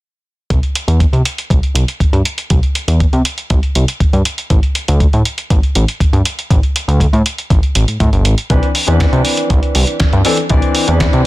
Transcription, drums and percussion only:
0.50 kick, closed hi-hat
0.63 closed hi-hat
0.75 closed hi-hat
0.88 closed hi-hat
1.00 kick, closed hi-hat
1.13 closed hi-hat
1.25 closed hi-hat
1.38 closed hi-hat
1.50 kick, closed hi-hat
1.63 closed hi-hat
1.75 closed hi-hat
1.88 closed hi-hat
2.00 kick, closed hi-hat
2.13 closed hi-hat
2.25 closed hi-hat
2.38 closed hi-hat
2.50 kick, closed hi-hat
2.63 closed hi-hat
2.75 closed hi-hat
2.88 closed hi-hat
3.00 kick, closed hi-hat
3.13 closed hi-hat
3.25 closed hi-hat
3.38 closed hi-hat
3.50 kick, closed hi-hat
3.63 closed hi-hat
3.75 closed hi-hat
3.88 closed hi-hat
4.00 kick, closed hi-hat
4.13 closed hi-hat
4.25 closed hi-hat
4.38 closed hi-hat
4.50 kick, closed hi-hat
4.63 closed hi-hat
4.75 closed hi-hat
4.88 closed hi-hat
5.00 kick, closed hi-hat
5.13 closed hi-hat
5.25 closed hi-hat
5.38 closed hi-hat
5.50 kick, closed hi-hat
5.63 closed hi-hat
5.75 closed hi-hat
5.88 closed hi-hat
6.00 kick, closed hi-hat
6.13 closed hi-hat
6.25 closed hi-hat
6.39 closed hi-hat
6.50 kick, closed hi-hat
6.63 closed hi-hat
6.76 closed hi-hat
6.89 closed hi-hat
7.00 kick, closed hi-hat
7.13 closed hi-hat
7.26 closed hi-hat
7.38 closed hi-hat
7.50 kick, closed hi-hat
7.63 closed hi-hat
7.75 closed hi-hat
7.88 closed hi-hat
8.00 kick, closed hi-hat
8.13 closed hi-hat
8.25 closed hi-hat
8.38 closed hi-hat
8.50 kick, closed hi-hat
8.63 closed hi-hat
8.75 open hi-hat
8.88 closed hi-hat
9.00 kick, snare, closed hi-hat
9.13 closed hi-hat
9.25 open hi-hat
9.37 closed hi-hat
9.50 kick, closed hi-hat
9.63 closed hi-hat
9.75 open hi-hat
9.87 closed hi-hat
10.00 kick, snare, closed hi-hat
10.13 closed hi-hat
10.25 open hi-hat
10.37 closed hi-hat
10.49 kick, closed hi-hat
10.62 closed hi-hat
10.75 open hi-hat
10.88 closed hi-hat
11.00 kick, snare, closed hi-hat
11.13 closed hi-hat

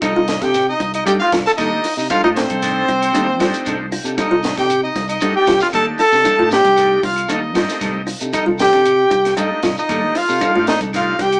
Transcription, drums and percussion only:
0.02 kick, closed hi-hat, claves, shekere
0.28 snare, closed hi-hat, shekere
0.42 kick, snare, closed hi-hat, shekere
0.54 snare, closed hi-hat, claves, shekere
0.80 kick, closed hi-hat, shekere
0.94 closed hi-hat, claves, shekere
1.07 closed hi-hat, shekere
1.32 kick, snare, closed hi-hat, claves, shekere
1.47 snare, shekere
1.58 kick, snare, closed hi-hat, claves, shekere
1.84 open hi-hat, shekere
1.98 shekere
2.10 kick, closed hi-hat, claves, shekere
2.36 snare, closed hi-hat, shekere
2.50 kick, closed hi-hat, shekere
2.62 snare, closed hi-hat, claves, shekere
2.88 kick, closed hi-hat, shekere
3.02 closed hi-hat, claves, shekere
3.15 closed hi-hat, shekere
3.40 kick, snare, closed hi-hat, claves, shekere
3.54 closed hi-hat, shekere
3.66 kick, closed hi-hat, claves, shekere
3.92 open hi-hat, shekere
4.05 closed hi-hat, shekere
4.18 kick, closed hi-hat, claves, shekere
4.43 snare, closed hi-hat, shekere
4.57 kick, snare, closed hi-hat, shekere
4.69 closed hi-hat, claves, shekere
4.95 kick, snare, closed hi-hat, shekere
5.08 closed hi-hat, claves, shekere
5.20 closed hi-hat, shekere
5.46 kick, snare, closed hi-hat, claves, shekere
5.60 snare, shekere
5.72 kick, closed hi-hat, claves, shekere
5.98 open hi-hat, shekere
6.12 snare, shekere
6.25 kick, closed hi-hat, claves, shekere
6.51 snare, closed hi-hat, shekere
6.65 kick, snare, closed hi-hat, shekere
6.76 snare, closed hi-hat, claves, shekere
7.03 kick, open hi-hat, shekere
7.16 closed hi-hat, claves, shekere
7.29 closed hi-hat, shekere
7.55 kick, snare, closed hi-hat, claves, shekere
7.69 snare, closed hi-hat, shekere
7.80 kick, snare, closed hi-hat, claves, shekere
8.07 open hi-hat, shekere
8.20 closed hi-hat, shekere
8.33 kick, closed hi-hat, claves, shekere
8.59 snare, closed hi-hat, shekere
8.73 kick, snare, closed hi-hat, shekere
8.85 closed hi-hat, claves, shekere
9.11 kick, closed hi-hat, shekere
9.25 snare, closed hi-hat, claves, shekere
9.37 closed hi-hat, shekere
9.63 kick, snare, closed hi-hat, claves, shekere
9.77 shekere
9.89 kick, closed hi-hat, claves, shekere
10.15 open hi-hat, shekere
10.29 shekere
10.41 kick, closed hi-hat, claves, shekere
10.67 snare, closed hi-hat, shekere
10.81 kick, closed hi-hat, shekere
10.93 snare, closed hi-hat, claves, shekere
11.19 kick, snare, closed hi-hat, shekere
11.32 closed hi-hat, claves, shekere

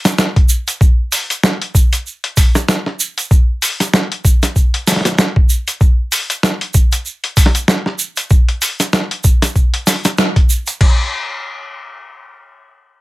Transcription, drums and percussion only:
0.05 snare, closed hi-hat, shaker
0.18 snare, shaker
0.36 kick, closed hi-hat
0.49 shaker
0.68 closed hi-hat, shaker
0.81 kick, shaker
1.12 open hi-hat, shaker
1.30 closed hi-hat, shaker
1.43 snare, shaker
1.62 closed hi-hat
1.75 kick, shaker
1.93 closed hi-hat, shaker
2.07 shaker
2.24 closed hi-hat
2.37 kick, open hi-hat, shaker
2.55 snare, shaker
2.68 snare, shaker
2.86 snare
3.00 shaker
3.18 closed hi-hat, shaker
3.31 kick, shaker
3.62 open hi-hat, shaker
3.80 snare, closed hi-hat, shaker
3.94 snare, shaker
4.12 closed hi-hat
4.25 kick, shaker
4.43 snare, closed hi-hat, shaker
4.56 kick, shaker
4.74 closed hi-hat
4.87 snare, open hi-hat, shaker
4.92 snare
4.96 snare
5.01 snare
5.05 snare, closed hi-hat, shaker
5.09 snare
5.12 snare
5.15 snare, shaker
5.18 snare
5.36 kick
5.49 shaker
5.68 closed hi-hat, shaker
5.81 kick, shaker
6.12 open hi-hat, shaker
6.30 closed hi-hat, shaker
6.43 snare, shaker
6.61 closed hi-hat
6.74 kick, shaker
6.92 closed hi-hat, shaker
7.05 shaker
7.24 closed hi-hat
7.37 kick, open hi-hat, shaker
7.46 snare
7.55 closed hi-hat, shaker
7.68 snare, shaker
7.86 snare
7.99 shaker
8.17 closed hi-hat, shaker
8.30 kick, shaker
8.49 closed hi-hat
8.62 open hi-hat, shaker
8.80 snare, closed hi-hat, shaker
8.93 snare, shaker
9.11 closed hi-hat
9.24 kick, shaker
9.42 snare, closed hi-hat, shaker
9.56 kick, shaker
9.74 closed hi-hat
9.87 snare, open hi-hat, shaker
10.05 snare, closed hi-hat, shaker
10.18 snare, shaker
10.36 kick, closed hi-hat
10.50 shaker
10.67 closed hi-hat, shaker
10.81 kick, crash

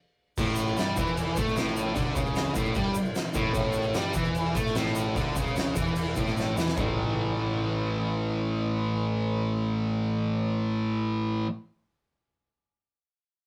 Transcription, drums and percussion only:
0.37 kick, crash, shaker
0.56 crash, shaker
0.77 snare, crash, shaker
0.96 kick, crash, shaker
1.07 shaker
1.17 crash, shaker
1.36 kick, crash, shaker
1.47 snare, shaker
1.56 snare, crash, shaker
1.68 snare
1.77 crash, shaker
1.96 kick, crash, shaker
2.16 kick, crash, shaker
2.26 shaker
2.35 snare, crash, shaker
2.55 kick, crash, shaker
2.65 shaker
2.74 kick, crash, shaker
2.95 crash, shaker
3.05 shaker
3.15 snare, crash, shaker
3.34 kick, crash, shaker
3.54 kick, crash, shaker
3.73 crash, shaker
3.83 shaker
3.94 snare, crash, shaker
4.13 kick, crash, shaker
4.24 shaker
4.35 crash, shaker
4.55 kick, crash, shaker
4.67 snare, shaker
4.75 snare, crash, shaker
4.86 snare
4.95 crash, shaker
5.16 kick, crash, shaker
5.36 kick, crash, shaker
5.46 shaker
5.56 snare, crash, shaker
5.76 kick, crash, shaker
5.86 shaker
5.96 crash, shaker
6.16 kick, crash, shaker
6.27 snare, shaker
6.37 snare, shaker
6.57 snare, shaker
6.67 snare, shaker
6.77 kick, floor tom, shaker

